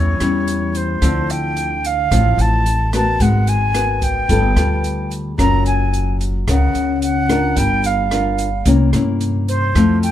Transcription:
0.00 0.18 E2 medium
0.00 0.99 E3 soft
0.00 0.16 G3 soft
0.00 0.16 C#4 medium
0.00 0.16 E4 medium
0.00 0.78 C#5 medium
0.20 0.98 E2 medium
0.20 0.98 G3 soft
0.20 0.98 C#4 soft
0.20 0.98 E4 medium
0.20 cross-stick medium
0.20 closed hi-hat soft
0.47 closed hi-hat soft
0.75 1.32 C5 medium
0.75 closed hi-hat soft
1.02 2.07 D2 medium
1.02 2.08 D3 medium
1.02 1.75 F3 soft
1.02 1.76 C4 soft
1.02 1.76 E4 medium
1.02 kick medium
1.02 cross-stick soft
1.02 closed hi-hat soft
1.30 1.87 G5 medium
1.30 closed hi-hat soft
1.57 closed hi-hat soft
1.84 2.42 F5 medium
1.84 closed hi-hat soft
2.11 2.36 A1 medium
2.11 3.18 A2 soft
2.11 2.65 F3 soft
2.11 2.66 C4 soft
2.11 2.66 E4 medium
2.11 kick soft
2.11 cross-stick medium
2.11 closed hi-hat soft
2.38 3.16 A1 medium
2.38 2.94 A5 medium
2.38 closed hi-hat soft
2.66 closed hi-hat soft
2.93 3.70 B3 medium
2.93 3.71 F#4 medium
2.93 3.71 A#4 medium
2.93 3.23 A5 medium
2.93 cross-stick medium
2.93 closed hi-hat soft
3.20 4.25 G#1 medium
3.20 4.27 G#3 medium
3.20 3.50 F#5 medium
3.20 kick soft
3.20 closed hi-hat soft
3.47 4.05 G#5 medium
3.47 closed hi-hat soft
3.74 4.27 B3 soft
3.74 4.27 F#4 soft
3.74 4.27 A#4 soft
3.74 cross-stick soft
3.74 closed hi-hat soft
4.02 5.12 G5 medium
4.02 kick soft
4.02 closed hi-hat soft
4.29 4.55 G1 medium
4.29 5.36 G3 soft
4.29 4.46 B3 soft
4.29 4.46 F4 soft
4.29 4.46 A4 medium
4.29 kick medium
4.29 closed hi-hat soft
4.56 5.34 D2 medium
4.56 5.34 B3 soft
4.56 5.34 F4 medium
4.56 5.34 A4 soft
4.56 cross-stick medium
4.56 closed hi-hat soft
4.84 closed hi-hat soft
5.11 closed hi-hat soft
5.38 6.44 F#1 medium
5.38 6.44 F#3 soft
5.38 6.43 C#4 soft
5.38 6.43 F4 soft
5.38 6.43 A#4 soft
5.38 5.64 A#5 loud
5.38 kick soft
5.38 cross-stick medium
5.38 closed hi-hat soft
5.66 6.17 G#5 medium
5.66 closed hi-hat soft
5.93 closed hi-hat soft
6.21 closed hi-hat soft
6.47 6.73 C#2 medium
6.47 7.54 C#3 soft
6.47 7.25 C#4 soft
6.47 7.25 A#4 soft
6.47 6.99 F#5 medium
6.47 kick soft
6.47 cross-stick medium
6.47 closed hi-hat soft
6.74 7.52 C#2 medium
6.74 closed hi-hat soft
7.02 7.59 F#5 medium
7.02 closed hi-hat soft
7.29 8.07 D4 soft
7.29 8.07 F4 medium
7.29 8.07 A#4 medium
7.29 cross-stick medium
7.29 closed hi-hat soft
7.56 8.62 G1 medium
7.56 8.63 G3 soft
7.56 7.87 G5 loud
7.56 kick soft
7.56 closed hi-hat soft
7.84 8.67 F5 medium
7.84 closed hi-hat soft
8.11 8.48 D4 soft
8.11 8.48 F4 soft
8.11 8.49 A#4 medium
8.11 cross-stick medium
8.11 closed hi-hat soft
8.38 closed hi-hat soft
8.65 8.91 C2 medium
8.65 9.73 C3 soft
8.65 8.89 A#3 soft
8.65 8.89 C#4 soft
8.65 8.89 E4 soft
8.65 kick medium
8.65 closed hi-hat medium
8.93 9.71 G2 medium
8.93 9.71 A#3 soft
8.93 9.71 C#4 soft
8.93 9.71 E4 medium
8.93 cross-stick medium
8.93 closed hi-hat soft
9.21 closed hi-hat soft
9.48 9.99 C5 medium
9.48 closed hi-hat soft
9.75 10.12 F2 medium
9.75 10.12 F3 medium
9.75 10.12 A3 soft
9.75 10.12 C4 soft
9.75 10.12 E4 medium
9.75 kick soft
9.75 cross-stick medium
9.75 closed hi-hat soft
10.03 10.12 G5 loud
10.03 closed hi-hat soft

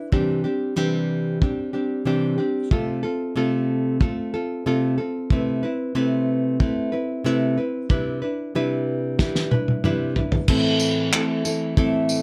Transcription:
0.00 0.12 D4 soft
0.00 0.12 E4 soft
0.00 0.12 B4 soft
0.12 0.44 C3 medium
0.12 0.45 E3 medium
0.12 0.45 G3 medium
0.12 0.44 C4 medium
0.12 0.44 D4 medium
0.12 0.43 G4 medium
0.12 kick medium
0.44 0.75 G3 soft
0.44 0.76 C4 medium
0.44 0.76 D4 soft
0.44 0.76 G4 medium
0.76 1.41 C3 medium
0.76 1.41 E3 medium
0.76 1.40 G3 medium
0.76 1.42 C4 medium
0.76 1.42 D4 medium
0.76 1.42 G4 medium
1.41 1.74 G3 medium
1.41 1.73 C4 medium
1.41 1.73 D4 medium
1.41 1.72 G4 medium
1.41 kick loud
1.73 2.05 G3 soft
1.73 2.05 C4 soft
1.73 2.06 D4 soft
1.73 2.06 G4 soft
2.05 2.38 C3 medium
2.05 2.38 E3 medium
2.05 2.39 G3 medium
2.05 2.39 C4 medium
2.05 2.38 D4 medium
2.05 2.37 G4 medium
2.38 2.71 G3 soft
2.38 2.71 C4 soft
2.38 2.71 D4 soft
2.38 2.71 G4 soft
2.71 3.04 C3 medium
2.71 3.04 A3 medium
2.71 3.04 C4 medium
2.71 3.03 F4 medium
2.71 3.02 A4 medium
2.71 kick medium
3.03 3.36 C4 soft
3.03 3.36 F4 soft
3.03 3.36 A4 medium
3.36 4.01 C3 medium
3.36 4.00 A3 medium
3.36 4.01 C4 medium
3.36 4.00 F4 medium
3.36 4.02 A4 medium
4.00 4.33 A3 medium
4.00 4.33 C4 medium
4.00 4.34 F4 medium
4.00 4.33 A4 medium
4.00 kick loud
4.34 4.65 C4 soft
4.34 4.66 F4 medium
4.34 4.66 A4 medium
4.66 4.98 C3 medium
4.66 4.98 A3 medium
4.66 4.98 C4 medium
4.66 4.97 F4 medium
4.66 4.97 A4 medium
4.98 5.31 C4 soft
4.98 5.31 F4 soft
4.98 5.30 A4 soft
5.30 5.63 C3 medium
5.30 5.63 A3 medium
5.30 5.64 C4 medium
5.30 5.63 E4 medium
5.30 5.62 B4 medium
5.30 kick medium
5.63 5.94 C4 soft
5.63 5.94 E4 medium
5.63 5.95 B4 medium
5.95 6.60 C3 medium
5.95 6.59 A3 medium
5.95 6.60 C4 medium
5.95 6.61 E4 medium
5.95 6.61 B4 medium
6.60 6.92 A3 medium
6.60 6.93 C4 medium
6.60 6.92 E4 medium
6.60 6.91 B4 medium
6.60 kick loud
6.92 7.24 C4 soft
6.92 7.25 E4 soft
6.92 7.25 B4 soft
7.24 7.57 C3 medium
7.24 7.57 A3 medium
7.24 7.58 C4 loud
7.24 7.57 E4 loud
7.24 7.56 B4 loud
7.58 7.90 C4 soft
7.58 7.89 E4 soft
7.58 7.90 B4 soft
7.89 8.22 C3 medium
7.89 8.22 G3 medium
7.89 8.22 D4 medium
7.89 8.22 E4 medium
7.89 8.21 B4 medium
7.89 kick medium
8.22 8.54 D4 soft
8.22 8.55 E4 soft
8.22 8.54 B4 medium
8.55 9.19 C3 medium
8.55 9.18 G3 medium
8.55 9.18 D4 medium
8.55 9.20 E4 medium
8.55 9.20 B4 medium
9.19 9.51 G3 medium
9.19 9.52 D4 medium
9.19 9.52 E4 medium
9.19 9.50 B4 medium
9.19 kick medium
9.19 snare soft
9.35 snare soft
9.51 9.83 D4 soft
9.51 9.84 E4 medium
9.51 9.84 B4 medium
9.51 high tom medium
9.68 high tom medium
9.84 10.16 C3 medium
9.84 10.16 G3 medium
9.84 10.17 D4 medium
9.84 10.16 E4 medium
9.84 10.15 B4 medium
9.84 mid tom medium
10.16 10.49 D4 soft
10.16 10.48 E4 soft
10.16 10.48 B4 soft
10.16 floor tom medium
10.32 floor tom medium
10.48 11.13 A2 medium
10.48 11.77 E3 medium
10.48 11.13 A3 medium
10.48 11.14 C4 loud
10.48 11.14 E4 medium
10.48 11.15 A4 medium
10.48 kick loud
10.48 crash medium
10.80 tambourine medium
11.13 11.45 A3 medium
11.13 11.46 C4 medium
11.13 11.45 E4 medium
11.13 11.44 A4 medium
11.13 clap loud
11.45 11.76 A3 soft
11.45 11.77 C4 soft
11.45 11.77 E4 medium
11.45 11.77 A4 medium
11.45 tambourine medium
11.77 12.22 A2 medium
11.77 12.22 E3 medium
11.77 12.22 A3 medium
11.77 12.22 C4 loud
11.77 12.22 E4 medium
11.77 12.22 A4 loud
11.77 kick loud
12.09 tambourine medium

